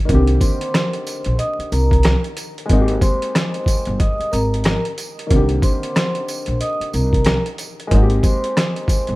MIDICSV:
0, 0, Header, 1, 6, 480
1, 0, Start_track
1, 0, Key_signature, -3, "minor"
1, 0, Tempo, 652174
1, 63, Time_signature, 4, 2, 24, 8
1, 6740, End_track
2, 0, Start_track
2, 0, Title_t, "Vibraphone"
2, 0, Program_c, 0, 11
2, 297, Note_on_c, 0, 72, 80
2, 303, Note_on_c, 0, 84, 61
2, 991, Note_off_c, 0, 72, 0
2, 993, Note_off_c, 0, 84, 0
2, 1019, Note_on_c, 0, 75, 86
2, 1026, Note_on_c, 0, 87, 68
2, 1237, Note_off_c, 0, 75, 0
2, 1241, Note_off_c, 0, 87, 0
2, 1265, Note_on_c, 0, 70, 78
2, 1270, Note_on_c, 0, 82, 58
2, 1623, Note_off_c, 0, 70, 0
2, 1626, Note_off_c, 0, 82, 0
2, 2217, Note_on_c, 0, 72, 78
2, 2224, Note_on_c, 0, 84, 69
2, 2911, Note_off_c, 0, 72, 0
2, 2914, Note_off_c, 0, 84, 0
2, 2944, Note_on_c, 0, 75, 86
2, 2948, Note_on_c, 0, 87, 69
2, 3160, Note_off_c, 0, 75, 0
2, 3162, Note_off_c, 0, 87, 0
2, 3176, Note_on_c, 0, 70, 80
2, 3182, Note_on_c, 0, 82, 60
2, 3538, Note_off_c, 0, 70, 0
2, 3541, Note_off_c, 0, 82, 0
2, 4139, Note_on_c, 0, 72, 82
2, 4143, Note_on_c, 0, 84, 71
2, 4831, Note_off_c, 0, 72, 0
2, 4834, Note_off_c, 0, 84, 0
2, 4860, Note_on_c, 0, 75, 86
2, 4867, Note_on_c, 0, 87, 69
2, 5078, Note_off_c, 0, 75, 0
2, 5081, Note_off_c, 0, 87, 0
2, 5103, Note_on_c, 0, 70, 80
2, 5108, Note_on_c, 0, 82, 55
2, 5462, Note_off_c, 0, 70, 0
2, 5465, Note_off_c, 0, 82, 0
2, 6062, Note_on_c, 0, 72, 86
2, 6068, Note_on_c, 0, 84, 62
2, 6740, Note_off_c, 0, 72, 0
2, 6740, Note_off_c, 0, 84, 0
2, 6740, End_track
3, 0, Start_track
3, 0, Title_t, "Upright piano"
3, 0, Program_c, 1, 0
3, 0, Control_c, 1, 64, 127
3, 0, Note_on_c, 1, 67, 90
3, 38, Note_on_c, 1, 51, 79
3, 56, Note_on_c, 1, 58, 76
3, 72, Note_on_c, 1, 60, 68
3, 74, Control_c, 1, 64, 0
3, 78, Note_off_c, 1, 67, 0
3, 89, Note_on_c, 1, 50, 75
3, 106, Note_on_c, 1, 67, 87
3, 219, Control_c, 1, 64, 127
3, 1941, Note_off_c, 1, 51, 0
3, 1950, Note_off_c, 1, 58, 0
3, 1955, Note_on_c, 1, 56, 85
3, 1958, Note_off_c, 1, 60, 0
3, 1967, Note_off_c, 1, 50, 0
3, 1972, Note_on_c, 1, 58, 70
3, 1975, Note_off_c, 1, 67, 0
3, 1989, Note_on_c, 1, 60, 77
3, 1994, Control_c, 1, 64, 0
3, 2005, Note_on_c, 1, 63, 76
3, 2022, Note_on_c, 1, 66, 74
3, 2059, Note_off_c, 1, 66, 0
3, 2070, Note_on_c, 1, 67, 84
3, 2101, Control_c, 1, 64, 127
3, 3860, Note_off_c, 1, 56, 0
3, 3868, Note_off_c, 1, 58, 0
3, 3875, Note_on_c, 1, 51, 77
3, 3877, Note_off_c, 1, 60, 0
3, 3885, Note_off_c, 1, 63, 0
3, 3893, Note_on_c, 1, 58, 80
3, 3910, Note_on_c, 1, 60, 70
3, 3913, Control_c, 1, 64, 0
3, 3917, Note_off_c, 1, 67, 0
3, 3926, Note_on_c, 1, 50, 79
3, 3942, Note_on_c, 1, 67, 89
3, 4035, Control_c, 1, 64, 127
3, 5780, Note_off_c, 1, 51, 0
3, 5789, Note_off_c, 1, 58, 0
3, 5794, Note_on_c, 1, 56, 87
3, 5797, Note_off_c, 1, 60, 0
3, 5805, Note_off_c, 1, 50, 0
3, 5810, Note_on_c, 1, 58, 74
3, 5813, Note_off_c, 1, 67, 0
3, 5827, Note_on_c, 1, 60, 80
3, 5834, Control_c, 1, 64, 0
3, 5844, Note_on_c, 1, 63, 75
3, 5860, Note_on_c, 1, 66, 76
3, 5898, Note_off_c, 1, 66, 0
3, 5909, Note_on_c, 1, 67, 89
3, 5967, Control_c, 1, 64, 127
3, 6740, Note_off_c, 1, 56, 0
3, 6740, Note_off_c, 1, 58, 0
3, 6740, Note_off_c, 1, 60, 0
3, 6740, Note_off_c, 1, 63, 0
3, 6740, Note_off_c, 1, 67, 0
3, 6740, End_track
4, 0, Start_track
4, 0, Title_t, "Upright bass"
4, 0, Program_c, 2, 32
4, 68, Note_on_c, 2, 36, 106
4, 261, Note_off_c, 2, 36, 0
4, 928, Note_on_c, 2, 34, 93
4, 1006, Note_off_c, 2, 34, 0
4, 1266, Note_on_c, 2, 36, 94
4, 1575, Note_off_c, 2, 36, 0
4, 1987, Note_on_c, 2, 32, 104
4, 2180, Note_off_c, 2, 32, 0
4, 2848, Note_on_c, 2, 31, 96
4, 2927, Note_off_c, 2, 31, 0
4, 3186, Note_on_c, 2, 32, 92
4, 3495, Note_off_c, 2, 32, 0
4, 3906, Note_on_c, 2, 36, 105
4, 4100, Note_off_c, 2, 36, 0
4, 4768, Note_on_c, 2, 34, 97
4, 4846, Note_off_c, 2, 34, 0
4, 5106, Note_on_c, 2, 36, 95
4, 5415, Note_off_c, 2, 36, 0
4, 5826, Note_on_c, 2, 32, 104
4, 6020, Note_off_c, 2, 32, 0
4, 6688, Note_on_c, 2, 31, 99
4, 6740, Note_off_c, 2, 31, 0
4, 6740, End_track
5, 0, Start_track
5, 0, Title_t, "Muted upright bass strokes"
5, 1169, Note_on_c, 9, 29, 51
5, 1243, Note_off_c, 9, 29, 0
5, 3088, Note_on_c, 9, 29, 49
5, 3161, Note_off_c, 9, 29, 0
5, 5008, Note_on_c, 9, 29, 51
5, 5082, Note_off_c, 9, 29, 0
5, 6740, End_track
6, 0, Start_track
6, 0, Title_t, "Drums"
6, 66, Note_on_c, 9, 36, 114
6, 66, Note_on_c, 9, 42, 97
6, 140, Note_off_c, 9, 36, 0
6, 140, Note_off_c, 9, 42, 0
6, 202, Note_on_c, 9, 42, 52
6, 275, Note_off_c, 9, 42, 0
6, 300, Note_on_c, 9, 36, 104
6, 302, Note_on_c, 9, 42, 75
6, 302, Note_on_c, 9, 54, 62
6, 373, Note_off_c, 9, 36, 0
6, 375, Note_off_c, 9, 54, 0
6, 376, Note_off_c, 9, 42, 0
6, 450, Note_on_c, 9, 42, 68
6, 524, Note_off_c, 9, 42, 0
6, 546, Note_on_c, 9, 37, 95
6, 550, Note_on_c, 9, 38, 115
6, 552, Note_on_c, 9, 42, 97
6, 620, Note_off_c, 9, 37, 0
6, 623, Note_off_c, 9, 38, 0
6, 626, Note_off_c, 9, 42, 0
6, 688, Note_on_c, 9, 42, 47
6, 761, Note_off_c, 9, 42, 0
6, 785, Note_on_c, 9, 54, 81
6, 788, Note_on_c, 9, 42, 77
6, 859, Note_off_c, 9, 54, 0
6, 862, Note_off_c, 9, 42, 0
6, 916, Note_on_c, 9, 42, 51
6, 990, Note_off_c, 9, 42, 0
6, 1023, Note_on_c, 9, 42, 100
6, 1096, Note_off_c, 9, 42, 0
6, 1176, Note_on_c, 9, 42, 53
6, 1250, Note_off_c, 9, 42, 0
6, 1266, Note_on_c, 9, 54, 61
6, 1269, Note_on_c, 9, 42, 68
6, 1339, Note_off_c, 9, 54, 0
6, 1342, Note_off_c, 9, 42, 0
6, 1407, Note_on_c, 9, 36, 90
6, 1420, Note_on_c, 9, 42, 61
6, 1481, Note_off_c, 9, 36, 0
6, 1493, Note_off_c, 9, 42, 0
6, 1495, Note_on_c, 9, 42, 86
6, 1506, Note_on_c, 9, 37, 92
6, 1510, Note_on_c, 9, 38, 119
6, 1569, Note_off_c, 9, 42, 0
6, 1580, Note_off_c, 9, 37, 0
6, 1583, Note_off_c, 9, 38, 0
6, 1651, Note_on_c, 9, 42, 50
6, 1724, Note_off_c, 9, 42, 0
6, 1742, Note_on_c, 9, 42, 84
6, 1747, Note_on_c, 9, 54, 73
6, 1815, Note_off_c, 9, 42, 0
6, 1821, Note_off_c, 9, 54, 0
6, 1899, Note_on_c, 9, 42, 57
6, 1973, Note_off_c, 9, 42, 0
6, 1983, Note_on_c, 9, 42, 99
6, 1985, Note_on_c, 9, 36, 121
6, 2057, Note_off_c, 9, 42, 0
6, 2058, Note_off_c, 9, 36, 0
6, 2120, Note_on_c, 9, 42, 51
6, 2194, Note_off_c, 9, 42, 0
6, 2219, Note_on_c, 9, 36, 102
6, 2221, Note_on_c, 9, 42, 75
6, 2221, Note_on_c, 9, 54, 62
6, 2292, Note_off_c, 9, 36, 0
6, 2295, Note_off_c, 9, 42, 0
6, 2295, Note_off_c, 9, 54, 0
6, 2371, Note_on_c, 9, 42, 66
6, 2445, Note_off_c, 9, 42, 0
6, 2466, Note_on_c, 9, 37, 95
6, 2470, Note_on_c, 9, 38, 117
6, 2472, Note_on_c, 9, 42, 102
6, 2540, Note_off_c, 9, 37, 0
6, 2543, Note_off_c, 9, 38, 0
6, 2546, Note_off_c, 9, 42, 0
6, 2606, Note_on_c, 9, 42, 46
6, 2680, Note_off_c, 9, 42, 0
6, 2694, Note_on_c, 9, 36, 94
6, 2705, Note_on_c, 9, 54, 82
6, 2707, Note_on_c, 9, 42, 76
6, 2768, Note_off_c, 9, 36, 0
6, 2779, Note_off_c, 9, 54, 0
6, 2780, Note_off_c, 9, 42, 0
6, 2837, Note_on_c, 9, 42, 51
6, 2910, Note_off_c, 9, 42, 0
6, 2942, Note_on_c, 9, 42, 95
6, 2943, Note_on_c, 9, 36, 99
6, 3016, Note_off_c, 9, 36, 0
6, 3016, Note_off_c, 9, 42, 0
6, 3096, Note_on_c, 9, 42, 51
6, 3169, Note_off_c, 9, 42, 0
6, 3185, Note_on_c, 9, 54, 63
6, 3190, Note_on_c, 9, 42, 67
6, 3259, Note_off_c, 9, 54, 0
6, 3264, Note_off_c, 9, 42, 0
6, 3341, Note_on_c, 9, 42, 63
6, 3415, Note_off_c, 9, 42, 0
6, 3415, Note_on_c, 9, 42, 87
6, 3425, Note_on_c, 9, 37, 95
6, 3429, Note_on_c, 9, 38, 116
6, 3488, Note_off_c, 9, 42, 0
6, 3499, Note_off_c, 9, 37, 0
6, 3503, Note_off_c, 9, 38, 0
6, 3571, Note_on_c, 9, 42, 50
6, 3644, Note_off_c, 9, 42, 0
6, 3664, Note_on_c, 9, 42, 85
6, 3666, Note_on_c, 9, 54, 72
6, 3737, Note_off_c, 9, 42, 0
6, 3740, Note_off_c, 9, 54, 0
6, 3820, Note_on_c, 9, 42, 58
6, 3894, Note_off_c, 9, 42, 0
6, 3904, Note_on_c, 9, 36, 119
6, 3904, Note_on_c, 9, 42, 99
6, 3978, Note_off_c, 9, 36, 0
6, 3978, Note_off_c, 9, 42, 0
6, 4039, Note_on_c, 9, 42, 49
6, 4113, Note_off_c, 9, 42, 0
6, 4139, Note_on_c, 9, 36, 103
6, 4141, Note_on_c, 9, 54, 62
6, 4144, Note_on_c, 9, 42, 74
6, 4212, Note_off_c, 9, 36, 0
6, 4215, Note_off_c, 9, 54, 0
6, 4217, Note_off_c, 9, 42, 0
6, 4292, Note_on_c, 9, 42, 66
6, 4366, Note_off_c, 9, 42, 0
6, 4386, Note_on_c, 9, 37, 99
6, 4390, Note_on_c, 9, 38, 117
6, 4392, Note_on_c, 9, 42, 103
6, 4460, Note_off_c, 9, 37, 0
6, 4463, Note_off_c, 9, 38, 0
6, 4466, Note_off_c, 9, 42, 0
6, 4526, Note_on_c, 9, 42, 47
6, 4600, Note_off_c, 9, 42, 0
6, 4625, Note_on_c, 9, 54, 82
6, 4628, Note_on_c, 9, 42, 75
6, 4699, Note_off_c, 9, 54, 0
6, 4701, Note_off_c, 9, 42, 0
6, 4755, Note_on_c, 9, 42, 50
6, 4829, Note_off_c, 9, 42, 0
6, 4862, Note_on_c, 9, 42, 95
6, 4936, Note_off_c, 9, 42, 0
6, 5015, Note_on_c, 9, 42, 54
6, 5088, Note_off_c, 9, 42, 0
6, 5103, Note_on_c, 9, 54, 60
6, 5108, Note_on_c, 9, 42, 65
6, 5177, Note_off_c, 9, 54, 0
6, 5182, Note_off_c, 9, 42, 0
6, 5246, Note_on_c, 9, 36, 89
6, 5257, Note_on_c, 9, 42, 60
6, 5319, Note_off_c, 9, 36, 0
6, 5331, Note_off_c, 9, 42, 0
6, 5332, Note_on_c, 9, 42, 87
6, 5343, Note_on_c, 9, 37, 94
6, 5347, Note_on_c, 9, 38, 116
6, 5406, Note_off_c, 9, 42, 0
6, 5417, Note_off_c, 9, 37, 0
6, 5420, Note_off_c, 9, 38, 0
6, 5489, Note_on_c, 9, 42, 49
6, 5563, Note_off_c, 9, 42, 0
6, 5581, Note_on_c, 9, 42, 81
6, 5585, Note_on_c, 9, 54, 73
6, 5654, Note_off_c, 9, 42, 0
6, 5659, Note_off_c, 9, 54, 0
6, 5739, Note_on_c, 9, 42, 58
6, 5812, Note_off_c, 9, 42, 0
6, 5824, Note_on_c, 9, 36, 120
6, 5824, Note_on_c, 9, 42, 96
6, 5897, Note_off_c, 9, 42, 0
6, 5898, Note_off_c, 9, 36, 0
6, 5960, Note_on_c, 9, 42, 52
6, 6034, Note_off_c, 9, 42, 0
6, 6059, Note_on_c, 9, 36, 108
6, 6061, Note_on_c, 9, 54, 62
6, 6062, Note_on_c, 9, 42, 77
6, 6132, Note_off_c, 9, 36, 0
6, 6134, Note_off_c, 9, 54, 0
6, 6136, Note_off_c, 9, 42, 0
6, 6211, Note_on_c, 9, 42, 66
6, 6285, Note_off_c, 9, 42, 0
6, 6306, Note_on_c, 9, 37, 93
6, 6310, Note_on_c, 9, 38, 121
6, 6312, Note_on_c, 9, 42, 99
6, 6380, Note_off_c, 9, 37, 0
6, 6383, Note_off_c, 9, 38, 0
6, 6386, Note_off_c, 9, 42, 0
6, 6450, Note_on_c, 9, 42, 47
6, 6523, Note_off_c, 9, 42, 0
6, 6535, Note_on_c, 9, 36, 93
6, 6544, Note_on_c, 9, 54, 83
6, 6548, Note_on_c, 9, 42, 74
6, 6608, Note_off_c, 9, 36, 0
6, 6618, Note_off_c, 9, 54, 0
6, 6622, Note_off_c, 9, 42, 0
6, 6677, Note_on_c, 9, 42, 53
6, 6740, Note_off_c, 9, 42, 0
6, 6740, End_track
0, 0, End_of_file